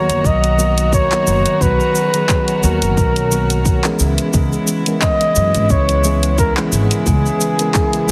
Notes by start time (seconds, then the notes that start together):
Already playing: D#3 F#3 A#3 B3 F#4 C#5 A#5
0.10 F#1, closed hi-hat, shaker
0.24 B1 D#5, kick, shaker
0.44 closed hi-hat, shaker
0.57 D#3 F#3 A#3 B3 F#4, shaker
0.78 closed hi-hat, shaker
0.93 C#5, kick, shaker
1.11 D#3 F#3 A#3 B3 F#4, clap, shaker
1.27 F#1, shaker
1.46 closed hi-hat, shaker
1.60 B1 D#3 F#3 B3 C#4 F#4 B4, kick, shaker
1.80 shaker
1.95 shaker
2.13 D#3 F#3 B3 G#4, closed hi-hat, shaker
2.29 kick, clap, shaker
2.48 closed hi-hat, shaker
2.63 D#2 D#3 F#3 A#3 B3 F#4 A#4, shaker
2.82 F#1, closed hi-hat, shaker
2.97 B1, kick, shaker
3.16 closed hi-hat, shaker
3.31 D#3 F#3 A#3 B3 F#4, shaker
3.50 closed hi-hat, shaker
3.65 kick, shaker
3.84 E3 G#3 B3 C#4 G#4, clap, shaker
3.99 C#2 C#3 G#3 B3 E4, shaker
4.18 closed hi-hat, shaker
4.33 C#2 E3 G#3 B3 C#4 G#4, kick, shaker
4.52 shaker
4.67 shaker
4.86 E3 G#3 B3 C#4 A#4, closed hi-hat, shaker
5.02 D#5, kick, clap, shaker
5.21 closed hi-hat, shaker
5.35 F#2 E3 G#3 B3 C#4 G#4, shaker
5.55 G#1, closed hi-hat, shaker
5.69 C#2 C#5, kick, shaker
5.89 closed hi-hat, shaker
6.03 E3 G#3 B3 C#4 G#4, shaker
6.23 closed hi-hat, shaker
6.38 A#4, kick, shaker
6.57 E3 G#3 B3 C#4 G#4, clap, shaker
6.72 G#1 G#4, shaker
6.91 closed hi-hat, shaker
7.05 C#2 E3 G#3 B3 C#4 G#4, kick, shaker
7.26 shaker
7.41 shaker
7.59 E3 G#3 B3 C#4 A#4, closed hi-hat, shaker
7.74 kick, clap, shaker
7.93 closed hi-hat, shaker
8.08 E3 G#3